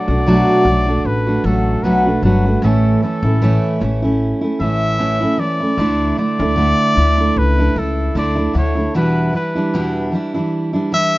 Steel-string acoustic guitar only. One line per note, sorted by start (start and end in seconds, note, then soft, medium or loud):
0.08 0.26 A3 soft
0.08 0.27 D4 soft
0.08 0.26 F#4 medium
0.27 0.66 B2 medium
0.27 0.65 F#3 medium
0.27 0.66 A3 medium
0.27 0.67 D4 medium
0.27 0.67 F#4 loud
0.66 0.88 F#3 medium
0.66 0.88 A3 medium
0.66 0.87 D4 medium
0.87 1.28 A3 soft
0.87 1.27 D4 medium
0.87 1.26 F#4 medium
1.27 1.44 A3 soft
1.27 1.45 D4 medium
1.27 1.45 F#4 soft
1.44 1.84 F#3 medium
1.44 1.84 A3 medium
1.44 1.84 D4 medium
1.44 1.85 F#4 medium
1.84 2.06 B2 medium
1.84 2.06 F#3 medium
1.84 2.06 A3 medium
1.84 2.06 D4 medium
1.84 2.04 F#4 medium
2.05 2.23 A3 soft
2.05 2.24 D4 medium
2.05 2.23 F#4 medium
2.23 2.45 F#3 medium
2.23 2.45 A3 medium
2.23 2.46 D4 medium
2.23 2.44 F#4 medium
2.46 2.62 A3 soft
2.46 2.64 D4 soft
2.46 2.63 F#4 medium
2.63 3.02 A2 medium
2.63 3.01 E3 medium
2.63 3.02 A3 medium
2.63 3.03 C#4 medium
2.63 3.03 E4 medium
3.02 3.24 E3 medium
3.02 3.24 A3 soft
3.02 3.25 C#4 medium
3.02 3.23 E4 medium
3.24 3.41 A3 soft
3.24 3.42 C#4 soft
3.24 3.42 E4 medium
3.42 3.81 A2 medium
3.42 3.79 E3 medium
3.42 3.80 A3 medium
3.42 3.81 C#4 medium
3.42 3.82 E4 loud
3.80 4.02 E3 medium
3.80 4.03 A3 medium
3.80 4.03 C#4 medium
3.80 4.01 E4 medium
4.02 4.43 A3 soft
4.02 4.42 C#4 medium
4.02 4.40 E4 medium
4.41 4.60 A3 soft
4.41 4.60 C#4 soft
4.41 4.59 E4 medium
4.60 4.98 E3 medium
4.60 4.98 A3 medium
4.60 4.99 C#4 medium
4.60 4.99 E4 medium
4.98 5.21 A2 medium
4.98 5.21 E3 medium
4.98 5.21 A3 medium
4.98 5.21 C#4 medium
4.98 5.19 E4 medium
5.20 5.38 A3 soft
5.20 5.38 C#4 soft
5.20 5.39 E4 medium
5.38 5.60 E3 medium
5.38 5.61 A3 medium
5.38 5.61 C#4 medium
5.38 5.59 E4 medium
5.60 5.78 A3 soft
5.60 5.79 C#4 soft
5.60 5.78 E4 soft
5.78 6.16 D3 medium
5.78 6.17 A3 medium
5.78 6.18 D4 medium
5.78 6.19 E4 medium
6.17 6.39 D3 medium
6.17 6.40 A3 medium
6.17 6.39 D4 medium
6.17 6.38 E4 medium
6.39 6.56 A3 medium
6.39 6.57 D4 medium
6.39 6.57 E4 medium
6.56 6.94 D3 medium
6.56 6.96 A3 medium
6.56 6.97 D4 medium
6.56 6.97 E4 medium
6.96 7.18 D3 medium
6.96 7.19 A3 medium
6.96 7.18 D4 medium
6.96 7.17 E4 medium
7.18 7.59 A3 soft
7.18 7.59 D4 medium
7.18 7.57 E4 medium
7.58 7.75 A3 soft
7.58 7.76 D4 medium
7.58 7.76 E4 medium
7.76 8.15 A3 medium
7.76 8.16 D4 medium
7.76 8.16 E4 medium
8.15 8.37 D3 medium
8.15 8.37 A3 medium
8.15 8.36 D4 medium
8.15 8.34 E4 loud
8.36 8.53 A3 soft
8.36 8.54 D4 medium
8.36 8.54 E4 medium
8.53 8.76 D3 medium
8.53 8.77 A3 medium
8.53 8.76 D4 medium
8.53 8.74 E4 medium
8.75 8.95 A3 soft
8.75 8.95 D4 soft
8.75 8.94 E4 soft
8.94 9.34 E2 medium
8.94 9.34 B2 medium
8.94 9.32 E3 medium
8.94 9.32 G3 medium
8.94 9.34 D4 medium
8.94 9.34 E4 medium
9.33 9.55 E3 medium
9.33 9.56 G3 medium
9.33 9.55 D4 medium
9.33 9.54 E4 medium
9.55 9.73 E3 soft
9.55 9.73 G3 medium
9.55 9.74 D4 medium
9.55 9.73 E4 medium
9.74 10.13 E2 medium
9.74 10.13 B2 medium
9.74 10.11 E3 medium
9.74 10.12 G3 medium
9.74 10.13 D4 medium
9.74 10.14 E4 medium
10.12 10.34 E3 medium
10.12 10.35 G3 medium
10.12 10.34 D4 medium
10.12 10.33 E4 medium
10.34 10.75 E3 medium
10.34 10.74 G3 soft
10.34 10.73 D4 medium
10.34 10.72 E4 medium
10.73 10.91 E3 medium
10.73 10.92 G3 medium
10.73 10.92 D4 medium
10.73 10.92 E4 medium
10.92 11.18 E3 medium
10.92 11.18 G3 medium
10.92 11.18 D4 medium
10.92 11.18 E4 medium